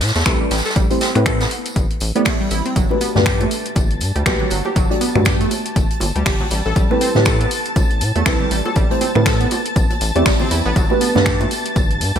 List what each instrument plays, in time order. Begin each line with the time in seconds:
Already playing: synth stab A3 C4 E4 G4 B4
0.01 analog synth bass A2, snare, open hi-hat, tambourine
0.08 snare, tambourine
0.15 analog synth bass E2, synth arpeggio sound A3, snare, closed hi-hat, tambourine
0.21 snare, tambourine
0.26 analog synth bass C2, synth stab A3 C4 E4 G4 B4, synth arpeggio sound A4, finger snap, kick, snare, closed hi-hat
0.41 synth arpeggio sound G3
0.51 analog synth bass A1, synth arpeggio sound G3, snare, open hi-hat, tambourine
0.58 snare, tambourine
0.65 synth arpeggio sound A4, snare, tambourine
0.70 snare, tambourine
0.76 analog synth bass A1, synth arpeggio sound G3, kick, closed hi-hat
0.90 synth stab A3 C4 E4 G4 C5, closed hi-hat, open hi-hat
1.01 synth arpeggio sound C4, snare, open hi-hat, tambourine
1.15 analog synth bass A2, synth stab A3 C4 E4 G4 B4, finger snap, closed hi-hat
1.26 synth arpeggio sound A4, finger snap, kick, closed hi-hat, tambourine
1.41 synth arpeggio sound B3, snare, closed hi-hat, tambourine
1.51 open hi-hat
1.66 closed hi-hat, tambourine
1.76 analog synth bass G1, kick, closed hi-hat, tambourine
1.90 closed hi-hat
2.00 analog synth bass A1, open hi-hat, tambourine
2.15 synth stab A3 C4 E4 G4 D5, synth arpeggio sound B3, closed hi-hat
2.25 synth arpeggio sound A3, finger snap, kick, snare, closed hi-hat, open hi-hat
2.41 synth arpeggio sound G3
2.50 analog synth bass A1, synth arpeggio sound E4, open hi-hat, tambourine
2.66 synth arpeggio sound C4, closed hi-hat
2.76 analog synth bass G1, synth arpeggio sound F#3, string machine A5 A6, kick, closed hi-hat, tambourine
2.90 synth stab A3 D4 F#4 G4 B4, high bongo
3.01 synth arpeggio sound B3, open hi-hat, tambourine
3.15 analog synth bass G2, synth stab A3 D4 F#4 G4 B4, snare, high conga, low conga
3.26 synth arpeggio sound G4, finger snap, kick, snare, closed hi-hat, tambourine
3.41 synth arpeggio sound A3, closed hi-hat, high bongo
3.51 open hi-hat, tambourine
3.66 closed hi-hat
3.76 analog synth bass G1, kick, closed hi-hat, tambourine, high bongo
3.91 closed hi-hat
4.01 analog synth bass G2, open hi-hat, tambourine
4.16 analog synth bass D2, synth arpeggio sound G3, closed hi-hat
4.26 analog synth bass B1, synth stab A3 D4 F#4 G4 B4, synth arpeggio sound G4, finger snap, kick, snare, closed hi-hat, tambourine, high bongo
4.40 synth arpeggio sound F#3, high conga
4.50 analog synth bass G1, synth arpeggio sound F#3, open hi-hat, tambourine
4.65 synth arpeggio sound G4, high bongo
4.76 analog synth bass G1, synth arpeggio sound F#3, kick, closed hi-hat, tambourine
4.90 synth stab A3 D4 F#4 G4 D5, closed hi-hat
5.01 synth arpeggio sound B3, open hi-hat, tambourine
5.15 analog synth bass G2, synth stab A3 D4 F#4 G4 B4, finger snap, high bongo, high conga, low conga
5.25 synth arpeggio sound G4, finger snap, kick, snare, closed hi-hat, tambourine
5.41 synth arpeggio sound A3, closed hi-hat
5.51 open hi-hat, tambourine, high bongo
5.66 closed hi-hat
5.76 analog synth bass G1, kick, closed hi-hat, tambourine
5.90 closed hi-hat
6.00 analog synth bass G1, open hi-hat, tambourine, high bongo
6.16 analog synth bass D2, synth arpeggio sound G3, closed hi-hat
6.26 analog synth bass G1, synth arpeggio sound G4, finger snap, kick, snare, closed hi-hat, open hi-hat
6.40 synth arpeggio sound F#3, high bongo, high conga
6.51 analog synth bass A1, synth arpeggio sound G3, open hi-hat, tambourine
6.66 analog synth bass A1, synth arpeggio sound A4
6.76 analog synth bass A1, synth arpeggio sound G3, kick, closed hi-hat, tambourine
6.90 synth stab A3 C4 E4 G4 B4, high bongo
7.01 synth arpeggio sound C4, open hi-hat, tambourine
7.15 analog synth bass A2, synth stab A3 C4 E4 G4 B4, snare, high conga, low conga
7.25 synth arpeggio sound A4, finger snap, kick, snare, closed hi-hat, tambourine, high bongo
7.41 synth arpeggio sound B3, closed hi-hat
7.51 open hi-hat, tambourine
7.66 closed hi-hat
7.76 analog synth bass A1, kick, closed hi-hat, tambourine, high bongo
7.91 closed hi-hat
8.01 analog synth bass A2, open hi-hat, tambourine
8.16 analog synth bass E2, synth arpeggio sound A3, closed hi-hat, high bongo
8.26 analog synth bass C2, synth stab A3 C4 E4 G4 B4, synth arpeggio sound A4, finger snap, kick, snare, closed hi-hat, tambourine
8.40 synth arpeggio sound G3, high conga
8.51 analog synth bass A1, synth arpeggio sound G3, open hi-hat, tambourine
8.66 synth arpeggio sound A4, high bongo
8.76 analog synth bass A1, synth arpeggio sound G3, kick, closed hi-hat, tambourine
8.90 synth stab A3 C4 E4 G4 C5, closed hi-hat
9.01 synth arpeggio sound C4, open hi-hat, tambourine, high bongo
9.15 analog synth bass A2, synth stab A3 C4 E4 G4 B4, finger snap, high conga, low conga
9.26 synth arpeggio sound A4, finger snap, kick, snare, closed hi-hat, tambourine
9.41 synth arpeggio sound B3, closed hi-hat
9.51 open hi-hat, tambourine, high bongo
9.66 closed hi-hat
9.76 analog synth bass A1, kick, closed hi-hat, tambourine
9.90 closed hi-hat, high bongo
10.01 analog synth bass A1, open hi-hat, tambourine
10.15 analog synth bass E2, synth stab A3 C4 E4 G4 D5, synth arpeggio sound A3, closed hi-hat
10.26 analog synth bass A1, synth arpeggio sound G3, finger snap, kick, snare, closed hi-hat, open hi-hat
10.40 synth arpeggio sound C4, high bongo, high conga
10.51 analog synth bass E2, synth arpeggio sound E4, open hi-hat, tambourine
10.66 analog synth bass A1, synth arpeggio sound B3
10.76 analog synth bass G1, synth arpeggio sound F#3, kick, closed hi-hat, tambourine
10.90 synth stab A3 D4 F#4 G4 B4, high bongo
11.01 synth arpeggio sound B3, open hi-hat, tambourine
11.15 analog synth bass G2, synth stab A3 D4 F#4 G4 B4, snare, high conga, low conga
11.26 synth arpeggio sound G4, finger snap, kick, snare, closed hi-hat, tambourine
11.41 synth arpeggio sound A3, closed hi-hat, high bongo
11.51 open hi-hat, tambourine
11.66 closed hi-hat
11.76 analog synth bass G1, kick, closed hi-hat, tambourine, high bongo
11.91 closed hi-hat
12.01 analog synth bass G2, open hi-hat, tambourine
12.16 analog synth bass D2, synth arpeggio sound G3, closed hi-hat